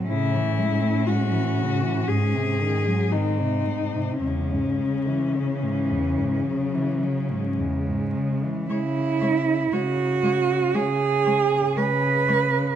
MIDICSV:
0, 0, Header, 1, 5, 480
1, 0, Start_track
1, 0, Key_signature, 4, "minor"
1, 0, Tempo, 1011804
1, 39, Time_signature, 4, 2, 24, 8
1, 1480, Tempo, 1117318
1, 3880, Tempo, 1020408
1, 5784, End_track
2, 0, Start_track
2, 0, Title_t, "Cello"
2, 0, Program_c, 0, 42
2, 40, Note_on_c, 0, 64, 67
2, 507, Note_on_c, 0, 66, 59
2, 515, Note_off_c, 0, 64, 0
2, 986, Note_on_c, 0, 68, 59
2, 993, Note_off_c, 0, 66, 0
2, 1480, Note_on_c, 0, 63, 51
2, 1486, Note_off_c, 0, 68, 0
2, 1948, Note_off_c, 0, 63, 0
2, 1951, Note_on_c, 0, 61, 46
2, 3383, Note_off_c, 0, 61, 0
2, 3876, Note_on_c, 0, 73, 44
2, 3914, Note_off_c, 0, 73, 0
2, 4119, Note_on_c, 0, 73, 42
2, 4157, Note_off_c, 0, 73, 0
2, 4361, Note_on_c, 0, 73, 44
2, 4399, Note_off_c, 0, 73, 0
2, 4601, Note_on_c, 0, 73, 42
2, 4639, Note_off_c, 0, 73, 0
2, 4841, Note_on_c, 0, 73, 43
2, 4879, Note_off_c, 0, 73, 0
2, 5082, Note_on_c, 0, 73, 44
2, 5119, Note_off_c, 0, 73, 0
2, 5321, Note_on_c, 0, 73, 44
2, 5359, Note_off_c, 0, 73, 0
2, 5561, Note_on_c, 0, 73, 47
2, 5599, Note_off_c, 0, 73, 0
2, 5784, End_track
3, 0, Start_track
3, 0, Title_t, "Cello"
3, 0, Program_c, 1, 42
3, 41, Note_on_c, 1, 61, 47
3, 1473, Note_on_c, 1, 60, 36
3, 1481, Note_off_c, 1, 61, 0
3, 1953, Note_off_c, 1, 60, 0
3, 1956, Note_on_c, 1, 56, 35
3, 2388, Note_off_c, 1, 56, 0
3, 2442, Note_on_c, 1, 52, 44
3, 2918, Note_on_c, 1, 54, 45
3, 2925, Note_off_c, 1, 52, 0
3, 3403, Note_on_c, 1, 56, 41
3, 3410, Note_off_c, 1, 54, 0
3, 3873, Note_off_c, 1, 56, 0
3, 3876, Note_on_c, 1, 64, 66
3, 4362, Note_on_c, 1, 66, 72
3, 4369, Note_off_c, 1, 64, 0
3, 4841, Note_on_c, 1, 68, 74
3, 4848, Note_off_c, 1, 66, 0
3, 5321, Note_on_c, 1, 71, 75
3, 5328, Note_off_c, 1, 68, 0
3, 5784, Note_off_c, 1, 71, 0
3, 5784, End_track
4, 0, Start_track
4, 0, Title_t, "Cello"
4, 0, Program_c, 2, 42
4, 46, Note_on_c, 2, 49, 40
4, 163, Note_on_c, 2, 52, 35
4, 170, Note_off_c, 2, 49, 0
4, 277, Note_on_c, 2, 56, 38
4, 284, Note_off_c, 2, 52, 0
4, 395, Note_on_c, 2, 57, 35
4, 403, Note_off_c, 2, 56, 0
4, 512, Note_on_c, 2, 56, 39
4, 519, Note_off_c, 2, 57, 0
4, 632, Note_on_c, 2, 52, 38
4, 639, Note_off_c, 2, 56, 0
4, 749, Note_on_c, 2, 49, 39
4, 756, Note_off_c, 2, 52, 0
4, 869, Note_on_c, 2, 52, 35
4, 876, Note_off_c, 2, 49, 0
4, 985, Note_off_c, 2, 52, 0
4, 988, Note_on_c, 2, 44, 39
4, 1107, Note_on_c, 2, 48, 36
4, 1114, Note_off_c, 2, 44, 0
4, 1233, Note_on_c, 2, 51, 35
4, 1241, Note_off_c, 2, 48, 0
4, 1356, Note_on_c, 2, 54, 34
4, 1363, Note_off_c, 2, 51, 0
4, 1480, Note_on_c, 2, 51, 34
4, 1486, Note_off_c, 2, 54, 0
4, 1596, Note_on_c, 2, 48, 33
4, 1602, Note_off_c, 2, 51, 0
4, 1714, Note_on_c, 2, 44, 31
4, 1721, Note_off_c, 2, 48, 0
4, 1836, Note_on_c, 2, 48, 33
4, 1842, Note_off_c, 2, 44, 0
4, 1953, Note_off_c, 2, 48, 0
4, 1955, Note_on_c, 2, 40, 34
4, 2081, Note_on_c, 2, 44, 30
4, 2088, Note_off_c, 2, 40, 0
4, 2202, Note_on_c, 2, 49, 32
4, 2208, Note_off_c, 2, 44, 0
4, 2322, Note_on_c, 2, 52, 31
4, 2328, Note_off_c, 2, 49, 0
4, 2443, Note_on_c, 2, 49, 31
4, 2450, Note_off_c, 2, 52, 0
4, 2562, Note_on_c, 2, 44, 31
4, 2568, Note_off_c, 2, 49, 0
4, 2677, Note_on_c, 2, 40, 35
4, 2684, Note_off_c, 2, 44, 0
4, 2799, Note_on_c, 2, 44, 31
4, 2805, Note_off_c, 2, 40, 0
4, 2916, Note_off_c, 2, 44, 0
4, 2918, Note_on_c, 2, 49, 35
4, 3037, Note_on_c, 2, 52, 30
4, 3043, Note_off_c, 2, 49, 0
4, 3158, Note_on_c, 2, 49, 31
4, 3164, Note_off_c, 2, 52, 0
4, 3280, Note_on_c, 2, 44, 32
4, 3287, Note_off_c, 2, 49, 0
4, 3398, Note_on_c, 2, 40, 34
4, 3405, Note_off_c, 2, 44, 0
4, 3521, Note_on_c, 2, 44, 33
4, 3527, Note_off_c, 2, 40, 0
4, 3641, Note_on_c, 2, 49, 30
4, 3648, Note_off_c, 2, 44, 0
4, 3761, Note_on_c, 2, 52, 30
4, 3767, Note_off_c, 2, 49, 0
4, 3873, Note_off_c, 2, 52, 0
4, 3876, Note_on_c, 2, 56, 45
4, 3913, Note_off_c, 2, 56, 0
4, 4119, Note_on_c, 2, 56, 41
4, 4157, Note_off_c, 2, 56, 0
4, 4357, Note_on_c, 2, 56, 41
4, 4394, Note_off_c, 2, 56, 0
4, 4596, Note_on_c, 2, 56, 45
4, 4634, Note_off_c, 2, 56, 0
4, 4836, Note_on_c, 2, 56, 45
4, 4874, Note_off_c, 2, 56, 0
4, 5083, Note_on_c, 2, 56, 41
4, 5121, Note_off_c, 2, 56, 0
4, 5320, Note_on_c, 2, 56, 45
4, 5358, Note_off_c, 2, 56, 0
4, 5560, Note_on_c, 2, 56, 43
4, 5598, Note_off_c, 2, 56, 0
4, 5784, End_track
5, 0, Start_track
5, 0, Title_t, "Cello"
5, 0, Program_c, 3, 42
5, 40, Note_on_c, 3, 45, 48
5, 987, Note_on_c, 3, 44, 42
5, 994, Note_off_c, 3, 45, 0
5, 1951, Note_off_c, 3, 44, 0
5, 1954, Note_on_c, 3, 49, 40
5, 3771, Note_off_c, 3, 49, 0
5, 3877, Note_on_c, 3, 49, 55
5, 4303, Note_off_c, 3, 49, 0
5, 4357, Note_on_c, 3, 49, 55
5, 4782, Note_off_c, 3, 49, 0
5, 4839, Note_on_c, 3, 49, 54
5, 5266, Note_off_c, 3, 49, 0
5, 5323, Note_on_c, 3, 49, 60
5, 5741, Note_off_c, 3, 49, 0
5, 5784, End_track
0, 0, End_of_file